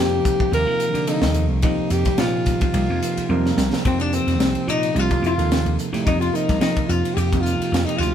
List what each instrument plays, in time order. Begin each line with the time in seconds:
Already playing: slap bass F2, tine electric piano C3 F3 A#3 D#4 G4, alto saxophone G4
0.25 kick, hi-hat pedal, ride
0.40 kick
0.52 slap bass D#2, tine electric piano C3 F3 A#3 D#4 G4, alto saxophone A#4, ride
0.67 slap bass F3
0.80 hi-hat pedal, ride
0.94 slap bass D3, ride
1.07 tine electric piano C3 F3 A#3 D#4 A4, alto saxophone D#4, ride
1.21 slap bass D#2, snare
1.34 slap bass D#2, hi-hat pedal, ride
1.50 slap bass C2
1.62 tine electric piano C3 F3 A#3 D#4 G4, slap bass F3, alto saxophone D#4, kick, ride
1.78 muted slap bass stroke
1.90 slap bass F2, alto saxophone G4, hi-hat pedal, ride
2.05 kick, snare, ride
2.18 slap bass A#2, tine electric piano C3 F3 A#3 D#4 G4, alto saxophone F4, snare, ride
2.46 kick, snare, hi-hat pedal, ride
2.61 alto saxophone F4, kick, ride
2.73 slap bass C2, tine electric piano C3 F3 A#3 D#4 G4, ride
2.90 slap bass F2
3.02 hi-hat pedal, ride
3.17 muted slap bass stroke, ride
3.29 slap bass F2, tine electric piano C3 F3 A#3 D#4 A#4, high tom
3.46 snare
3.57 slap bass C2, snare, hi-hat pedal
3.73 snare
3.84 slap bass F2, tine electric piano C3 F3 A#3 D#4 G4, alto saxophone C4, hollow-body jazz guitar C4, kick, ride
4.00 alto saxophone D4, hollow-body jazz guitar D4, ride
4.12 alto saxophone C4, hollow-body jazz guitar C4, hi-hat pedal
4.27 slap bass F2, snare, ride
4.40 slap bass C2, tine electric piano C3 F3 A#3 D#4 G4, snare, ride
4.55 muted slap bass stroke, ride
4.67 slap bass A#2, alto saxophone D#4, hollow-body jazz guitar D#4, hi-hat pedal
4.83 ride
4.94 slap bass C2, tine electric piano C3 F3 A#3 D#4 G4, alto saxophone F4, ride
4.99 hollow-body jazz guitar F4
5.11 slap bass C2, kick, ride
5.22 slap bass F2, alto saxophone F4, hi-hat pedal
5.27 hollow-body jazz guitar F4
5.38 slap bass D#2, tine electric piano C3 F3 A#3 D#4 A4, ride
5.52 snare, ride
5.65 slap bass D#2, ride
5.79 hi-hat pedal
5.93 slap bass A2, tine electric piano C3 F3 A#3 D#4 G4, snare, ride
6.05 slap bass F2, alto saxophone D#4, hollow-body jazz guitar D#4, kick, ride
6.19 alto saxophone F4, hollow-body jazz guitar F4, ride
6.33 tine electric piano C3 F3 A#3 D#4 A#4, alto saxophone D#4, hollow-body jazz guitar D#4, hi-hat pedal
6.49 slap bass C2, kick, snare, ride
6.60 slap bass F3, alto saxophone D#4, hollow-body jazz guitar D#4, snare, ride
6.76 kick, ride
6.87 slap bass F2, tine electric piano C3 F3 A#3 D#4 F4, alto saxophone F4, hollow-body jazz guitar F4, hi-hat pedal
7.05 ride
7.14 slap bass F2, alto saxophone G4, hollow-body jazz guitar G4
7.18 ride
7.32 slap bass F2, tine electric piano C3 F3 A#3 D#4 G4, kick, ride
7.41 alto saxophone F4, hollow-body jazz guitar F4
7.46 snare, hi-hat pedal
7.59 muted slap bass stroke, ride
7.72 slap bass F2, snare, ride
7.85 tine electric piano C3 F3 A#3 D#4 G4, alto saxophone D#4, hollow-body jazz guitar D#4, ride
7.96 slap bass D2, alto saxophone F4, hollow-body jazz guitar F4
8.02 hi-hat pedal